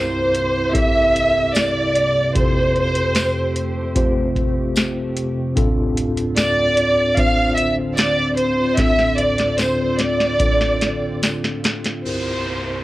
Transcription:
Already playing: C2 G2 C3 A#3 C4 E4 G4 A#4 C5
0.35 closed hi-hat
0.72 C4 E4 G4 A4 E5, kick, closed hi-hat
1.16 closed hi-hat
1.55 D5, snare, closed hi-hat, tambourine
1.96 closed hi-hat
2.34 F2 C3 A3 C4 F4 G4 A4 C5, kick, closed hi-hat
2.76 closed hi-hat
2.95 closed hi-hat
3.15 snare, closed hi-hat, tambourine
3.56 closed hi-hat
3.95 C4 F4 G4 C5, kick, closed hi-hat
4.36 kick, closed hi-hat
4.76 snare, closed hi-hat, tambourine
5.17 closed hi-hat
5.56 D2 A2 D3 C4 D4 F4 A4, kick, closed hi-hat
5.97 closed hi-hat
6.17 closed hi-hat
6.37 D5, snare, closed hi-hat, tambourine
6.77 closed hi-hat
7.16 C4 D4 F4 C5 F5, kick, closed hi-hat
7.55 E5, closed hi-hat
7.95 D5, closed hi-hat, tambourine
7.99 snare
8.36 C5, closed hi-hat
8.77 D2 A2 C4 D4 F4 A4 E5, kick, snare, closed hi-hat
8.99 snare
9.17 D5, closed hi-hat
9.38 snare, closed hi-hat
9.57 C5, snare, closed hi-hat, tambourine
9.99 D5, snare, closed hi-hat
10.20 snare
10.40 C4 D4 F4 A4, kick, closed hi-hat
10.61 snare
10.81 snare, closed hi-hat
11.23 snare, closed hi-hat, tambourine
11.44 snare
11.64 snare, closed hi-hat
11.84 snare, closed hi-hat
12.04 C2 G2 C3 A#3 C4 E4 G4 A#4 C5, downlifter

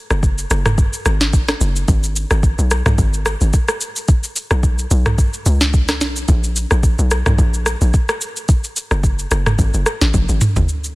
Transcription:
0.11 F#1, cross-stick, shaker
0.23 kick, shaker
0.38 shaker
0.51 F#1, cross-stick, shaker
0.66 cross-stick, mid tom, shaker
0.78 kick, shaker
0.93 shaker
1.06 G#1, cross-stick, shaker
1.21 snare, shaker
1.33 kick, shaker
1.48 cross-stick, snare, shaker
1.61 F#1, shaker
1.76 shaker
1.88 G#1, kick, shaker
2.04 shaker
2.16 shaker
2.31 G#1, cross-stick, shaker
2.43 kick, shaker
2.58 B1, shaker
2.71 cross-stick, shaker
2.86 B1, cross-stick, mid tom, shaker
2.98 G#1, kick, shaker
3.14 shaker
3.26 cross-stick, shaker
3.41 G#1, shaker
3.53 kick, shaker
3.68 cross-stick, shaker
3.81 shaker
3.96 shaker
4.08 kick, shaker
4.24 shaker
4.36 shaker
4.51 B1, cross-stick, shaker
4.63 kick, shaker
4.79 shaker
4.91 B1, shaker
5.06 cross-stick, mid tom, shaker
5.18 kick, shaker
5.34 shaker
5.46 C#2, shaker
5.61 snare, shaker
5.74 kick, shaker
5.89 cross-stick, snare, shaker
6.01 B1, snare, shaker
6.16 shaker
6.28 A#1, kick, shaker
6.44 shaker
6.56 shaker
6.71 A#1, cross-stick, shaker
6.83 kick, shaker
6.99 B1, shaker
7.11 cross-stick, shaker
7.26 B1, cross-stick, mid tom, shaker
7.38 A#1, kick, shaker
7.54 shaker
7.66 cross-stick, shaker
7.81 A#1, shaker
7.94 kick, shaker
8.09 cross-stick, shaker
8.21 shaker
8.37 shaker
8.49 kick, shaker
8.64 shaker
8.76 shaker
8.91 F#1, cross-stick, shaker
9.04 kick, shaker
9.19 shaker
9.31 F#1, cross-stick, shaker
9.46 cross-stick, mid tom, shaker
9.59 G#1, kick, shaker
9.74 F#1, shaker
9.86 cross-stick, shaker
10.01 A1, snare, shaker
10.14 F#1, kick, high tom, shaker
10.29 G#1, shaker
10.41 mid tom, shaker
10.56 F#1, floor tom, shaker
10.69 shaker
10.84 shaker

